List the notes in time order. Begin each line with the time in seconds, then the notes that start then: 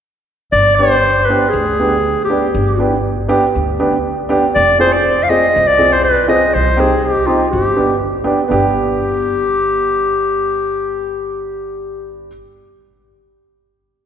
0.52 G1 D5
0.75 B3 D4 C5
0.80 G4
1.25 B4
1.29 B3 D4 G4
1.49 G#4
1.53 D2
1.80 B3 D4 G4
2.25 G4
2.29 B3 D4 G4
2.54 G1
2.79 B3 D4 G4
3.28 B3 D4 G4
3.55 D2
3.80 B3 D4 G4
4.29 B3 D4 G4
4.55 F1 D5
4.79 C4 F4 G#4 C5
4.92 D5
5.23 F5
5.29 C4 F4 G#4 D#5
5.56 C2
5.67 D5
5.79 C4 F4 G#4
5.92 C5
6.04 B4
6.28 C4 F4 G#4 D#5
6.54 C2 C5
6.77 C4 D#4 G4 G#4
7.03 G4
7.26 C4 D#4 F4 G4
7.51 G1 G4
7.76 B3 D4 G4
8.24 B3 D4 G4
8.48 G1 B3 D4 G4